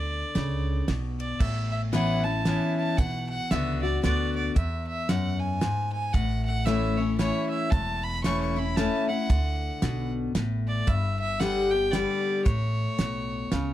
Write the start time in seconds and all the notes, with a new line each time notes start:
Already playing: D2 D3 D5
0.35 C#2 C#3, snare, ride
0.88 B1 B2, snare, ride
1.20 D5, ride
1.40 A1 A2 E5, kick, crash
1.71 E5
1.93 E3 B3 C#4 E4 F#5, snare, closed hi-hat
2.24 C#4 E4 A5
2.45 E3 B3 C#4 E4, snare, closed hi-hat
2.78 A5
2.97 B1 B2 F#5, kick, closed hi-hat
3.30 F#5
3.51 C#2 D3 B3 D4 F#4 E5, snare, closed hi-hat
3.82 D4 F#4 D5
4.03 D2 D3 B3 D4 F#4 D5, snare, closed hi-hat
4.36 D5
4.56 E2 E5, kick, closed hi-hat
4.87 E5
5.09 F#2 F#5, snare, closed hi-hat
5.40 G#5
5.61 G#2, snare, closed hi-hat
5.93 G#5
6.13 A1 A2 F#5, kick, closed hi-hat
6.45 F#5
6.65 E3 A3 C#4 E4 E5, snare, closed hi-hat
6.98 C#4 E4 C#5
7.18 E3 A3 C#4 E4 C#5, snare, closed hi-hat
7.50 E5
7.70 E1 E2 A5, kick, closed hi-hat
8.04 B5
8.24 E3 A3 C#4 E4 C#6, snare, closed hi-hat
8.41 C#6
8.56 C#4 E4 B5
8.76 E3 A3 C#4 E4 A5, snare, closed hi-hat
9.09 C#4 E4 F#5
9.30 D2 D3, kick, closed hi-hat
9.82 B1 B2, snare, closed hi-hat
10.35 A1 A2, snare, closed hi-hat
10.68 D5
10.87 G1 G2 E5, kick, closed hi-hat
11.20 E5
11.40 D3 G3 B3 G4 F#5, snare, closed hi-hat
11.71 B3 G4 G5
11.92 D3 G3 B3 G4 D5, snare, closed hi-hat
12.45 A1 A2 C#5, kick, closed hi-hat
12.98 B1 B2, snare, closed hi-hat
13.52 C#2 C#3, snare, closed hi-hat